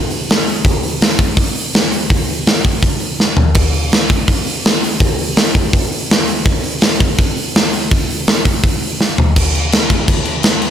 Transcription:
0.10 open hi-hat medium
0.30 snare loud
0.30 open hi-hat medium
0.47 open hi-hat medium
0.65 kick loud
0.65 open hi-hat medium
0.83 open hi-hat medium
1.01 snare loud
1.01 open hi-hat medium
1.19 kick medium
1.19 open hi-hat medium
1.37 kick medium
1.37 open hi-hat medium
1.55 open hi-hat medium
1.74 snare loud
1.74 open hi-hat medium
1.92 open hi-hat medium
2.10 kick loud
2.10 open hi-hat medium
2.28 open hi-hat medium
2.46 snare loud
2.46 open hi-hat medium
2.64 kick medium
2.64 open hi-hat medium
2.82 kick medium
2.82 open hi-hat medium
3.00 open hi-hat medium
3.20 snare medium
3.37 floor tom medium
3.55 kick loud
3.55 open hi-hat medium
3.55 crash medium
3.74 open hi-hat medium
3.92 snare loud
3.92 open hi-hat medium
4.10 kick medium
4.10 open hi-hat medium
4.28 kick medium
4.28 open hi-hat medium
4.47 open hi-hat medium
4.65 snare loud
4.65 open hi-hat medium
4.83 open hi-hat medium
5.00 kick loud
5.00 open hi-hat medium
5.18 open hi-hat medium
5.36 snare loud
5.36 open hi-hat medium
5.55 kick medium
5.55 open hi-hat medium
5.73 kick medium
5.73 open hi-hat medium
5.92 open hi-hat medium
6.10 snare loud
6.10 open hi-hat medium
6.27 open hi-hat medium
6.45 kick loud
6.45 open hi-hat medium
6.63 open hi-hat medium
6.81 snare loud
6.81 open hi-hat medium
7.00 kick medium
7.18 kick medium
7.18 open hi-hat medium
7.37 open hi-hat medium
7.55 snare loud
7.55 open hi-hat medium
7.73 open hi-hat medium
7.91 kick loud
7.91 open hi-hat medium
8.10 open hi-hat medium
8.27 snare loud
8.27 open hi-hat medium
8.45 kick medium
8.45 open hi-hat medium
8.64 kick medium
8.64 open hi-hat medium
8.82 open hi-hat medium
9.01 snare medium
9.18 floor tom medium
9.36 kick loud
9.36 crash loud
9.36 crash medium
9.55 crash medium
9.72 snare loud
9.72 crash medium
9.90 kick medium
9.90 crash medium
10.08 kick loud
10.08 crash medium
10.25 crash medium
10.43 snare loud
10.43 crash medium
10.62 crash medium

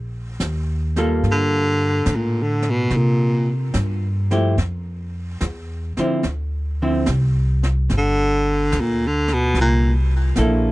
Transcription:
0.00 0.38 A#1 medium
0.40 1.21 D#2 medium
0.40 snare medium
0.40 hi-hat pedal medium
0.96 2.01 G3 soft
0.96 2.02 A#3 medium
0.96 2.02 F4 medium
0.96 2.02 A4 medium
0.96 snare soft
1.23 2.04 G2 medium
1.23 brush sweep soft
1.23 snare soft
1.31 2.17 D3 medium
2.06 2.87 A2 medium
2.06 snare soft
2.06 hi-hat pedal soft
2.16 2.44 A#2 medium
2.42 2.71 D3 medium
2.62 snare soft
2.70 2.98 B2 medium
2.90 3.71 C3 medium
2.90 brush sweep soft
2.90 snare soft
2.97 3.50 A#2 medium
3.74 4.55 G2 medium
3.74 snare medium
3.74 hi-hat pedal soft
4.31 4.55 F3 soft
4.31 4.55 A3 soft
4.31 4.55 E4 medium
4.31 4.56 G4 medium
4.31 snare soft
4.57 5.38 F2 medium
4.57 brush sweep soft
4.57 snare soft
5.41 5.94 E2 medium
5.41 snare soft
5.41 hi-hat pedal soft
5.97 6.22 D3 soft
5.97 6.22 F3 medium
5.97 6.22 C4 soft
5.97 6.23 E4 medium
5.97 muted upright bass stroke soft
5.97 snare soft
6.23 7.05 D2 medium
6.23 brush sweep soft
6.23 snare soft
6.82 7.05 D3 medium
6.82 7.06 F3 soft
6.82 7.06 C4 medium
6.82 7.06 E4 medium
7.06 7.88 C2 medium
7.06 snare medium
7.06 hi-hat pedal soft
7.63 snare soft
7.89 8.70 G1 medium
7.89 brush sweep soft
7.89 snare soft
7.97 8.82 D3 medium
8.72 9.53 D2 medium
8.72 snare soft
8.72 hi-hat pedal soft
8.80 9.09 A#2 medium
9.07 9.35 D3 medium
9.28 snare soft
9.33 9.58 B2 medium
9.54 10.34 C2 medium
9.54 brush sweep soft
9.54 snare soft
9.61 9.93 A#2 medium
10.36 10.72 A#1 medium
10.36 10.72 A#3 medium
10.36 10.72 E4 medium
10.36 10.72 A4 medium
10.36 snare medium
10.36 hi-hat pedal soft

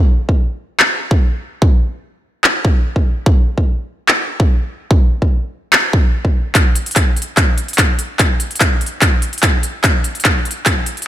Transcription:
0.29 kick medium
0.80 clap medium
1.11 kick medium
1.62 kick loud
2.44 clap medium
2.65 kick medium
2.96 kick medium
3.26 kick loud
3.58 kick medium
4.08 clap medium
4.40 kick medium
4.91 kick loud
5.22 kick medium
5.73 clap medium
5.93 kick medium
6.25 kick medium
6.55 kick loud
6.55 clap soft
6.55 closed hi-hat medium
6.75 closed hi-hat medium
6.86 closed hi-hat soft
6.91 closed hi-hat medium
6.96 kick medium
6.96 clap soft
6.96 closed hi-hat medium
7.17 closed hi-hat soft
7.22 closed hi-hat medium
7.37 kick medium
7.37 clap soft
7.37 closed hi-hat medium
7.58 closed hi-hat medium
7.68 closed hi-hat soft
7.73 closed hi-hat medium
7.78 kick medium
7.78 clap medium
7.78 closed hi-hat medium
7.99 closed hi-hat medium
8.19 kick loud
8.19 clap medium
8.19 closed hi-hat medium
8.40 closed hi-hat medium
8.51 closed hi-hat soft
8.56 closed hi-hat medium
8.60 kick loud
8.60 clap medium
8.60 closed hi-hat medium
8.81 closed hi-hat soft
8.86 closed hi-hat medium
9.02 kick medium
9.02 clap medium
9.02 closed hi-hat medium
9.22 closed hi-hat medium
9.33 closed hi-hat soft
9.38 closed hi-hat medium
9.43 kick medium
9.43 clap medium
9.43 closed hi-hat medium
9.63 closed hi-hat medium
9.84 kick loud
9.84 clap medium
9.84 closed hi-hat medium
10.04 closed hi-hat medium
10.15 closed hi-hat soft
10.20 closed hi-hat medium
10.25 kick loud
10.25 clap medium
10.25 closed hi-hat medium
10.45 closed hi-hat soft
10.51 closed hi-hat medium
10.66 kick loud
10.66 clap medium
10.66 closed hi-hat medium
10.86 closed hi-hat medium
10.97 closed hi-hat soft
11.02 closed hi-hat medium

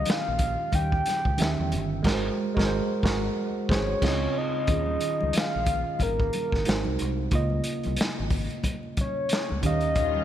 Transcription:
0.00 1.34 D#3 medium
0.00 1.35 C#4 medium
0.00 1.35 G4 medium
0.00 0.11 D#5 loud
0.00 1.36 F5 medium
0.06 0.76 F5 loud
0.06 closed hi-hat medium
0.06 muted conga soft
0.06 high conga medium
0.10 snare loud
0.26 0.55 A#1 medium
0.26 muted conga soft
0.39 kick medium
0.39 closed hi-hat medium
0.39 low conga medium
0.72 1.01 D#2 medium
0.72 1.73 G5 loud
0.72 kick medium
0.72 closed hi-hat medium
0.72 muted conga soft
0.72 high conga medium
0.72 low conga medium
0.92 kick medium
1.06 snare soft
1.06 closed hi-hat medium
1.06 high conga medium
1.25 1.37 C#2 medium
1.25 kick medium
1.38 1.56 D#2 loud
1.38 2.04 D#3 medium
1.38 2.04 C#4 medium
1.38 2.05 G4 medium
1.38 2.05 E5 medium
1.38 closed hi-hat medium
1.42 snare medium
1.58 1.75 E2 medium
1.58 high conga medium
1.71 2.05 G1 medium
1.71 closed hi-hat medium
1.71 low conga soft
2.03 2.29 G#1 medium
2.03 2.27 G#3 medium
2.03 2.28 F#4 medium
2.03 2.29 A#4 loud
2.03 kick loud
2.03 crash medium
2.07 snare medium
2.14 2.33 C5 medium
2.55 2.79 G#1 loud
2.55 2.77 G#3 medium
2.55 2.78 F#4 medium
2.55 2.79 A#4 medium
2.55 kick medium
2.59 snare medium
2.66 2.84 C5 loud
3.03 3.27 G#1 medium
3.03 3.28 F#4 medium
3.03 3.27 A#4 medium
3.03 kick medium
3.03 snare loud
3.69 3.93 G#1 medium
3.69 3.93 G#4 medium
3.69 3.93 C5 loud
3.69 4.39 C#5 medium
3.69 kick medium
3.69 snare loud
4.02 4.26 C#2 medium
4.02 4.25 C#3 medium
4.02 4.26 C4 medium
4.02 4.26 F4 loud
4.02 4.26 D#5 medium
4.02 kick loud
4.02 snare medium
4.02 crash medium
4.38 5.38 D#5 loud
4.67 4.96 D#2 medium
4.67 6.61 D#3 medium
4.67 6.62 C#4 medium
4.67 6.63 F4 soft
4.67 kick loud
4.67 closed hi-hat medium
4.67 muted conga soft
4.71 6.63 G#4 medium
4.86 high conga soft
5.01 closed hi-hat medium
5.20 5.33 C#2 medium
5.20 high conga medium
5.33 6.04 F5 loud
5.33 closed hi-hat medium
5.33 muted conga soft
5.33 high conga medium
5.38 snare loud
5.53 5.83 A#1 medium
5.53 muted conga soft
5.66 kick loud
5.66 closed hi-hat medium
5.66 low conga medium
5.99 6.28 G#1 medium
5.99 7.00 A#4 medium
5.99 kick medium
5.99 closed hi-hat medium
5.99 high conga medium
5.99 low conga medium
6.20 kick medium
6.33 closed hi-hat medium
6.33 high conga medium
6.52 6.64 G#1 medium
6.52 kick medium
6.52 snare soft
6.65 6.84 G#1 medium
6.65 7.32 G#3 medium
6.65 7.32 D#4 medium
6.65 7.32 F#4 medium
6.65 7.33 C5 medium
6.65 snare medium
6.65 closed hi-hat medium
6.65 muted conga soft
6.85 6.98 C2 medium
6.85 muted conga soft
6.85 high conga medium
6.98 7.28 C2 medium
6.98 closed hi-hat medium
6.98 low conga medium
7.31 7.60 C#2 loud
7.31 9.58 C#3 medium
7.31 9.59 A#3 medium
7.31 9.60 F4 medium
7.31 kick loud
7.31 closed hi-hat medium
7.31 muted conga soft
7.35 9.60 D#5 medium
7.50 high conga soft
7.64 closed hi-hat medium
7.83 7.97 C2 medium
7.83 closed hi-hat soft
7.83 high conga medium
7.97 closed hi-hat medium
7.97 high conga medium
8.01 snare loud
8.20 8.47 G#1 medium
8.30 kick medium
8.30 open hi-hat soft
8.30 low conga medium
8.50 closed hi-hat soft
8.63 kick medium
8.63 closed hi-hat medium
8.63 muted conga soft
8.63 high conga medium
8.63 low conga medium
8.83 muted conga soft
8.97 9.61 C#5 medium
8.97 kick medium
8.97 closed hi-hat medium
8.97 high conga medium
9.29 snare loud
9.29 closed hi-hat medium
9.29 muted conga soft
9.49 9.62 C#2 medium
9.49 muted conga soft
9.49 high conga medium
9.62 10.19 D#2 medium
9.62 10.24 D#3 medium
9.62 10.24 C#4 medium
9.62 10.24 G4 medium
9.62 kick medium
9.62 closed hi-hat medium
9.62 low conga medium
9.66 10.24 D#5 loud
9.66 10.24 F5 medium
9.81 closed hi-hat soft
9.95 10.24 D#3 medium
9.95 10.24 G3 medium
9.95 10.24 C#4 medium
9.95 10.24 F4 medium
9.95 kick medium
9.95 closed hi-hat medium
9.95 muted conga soft
10.14 high conga soft

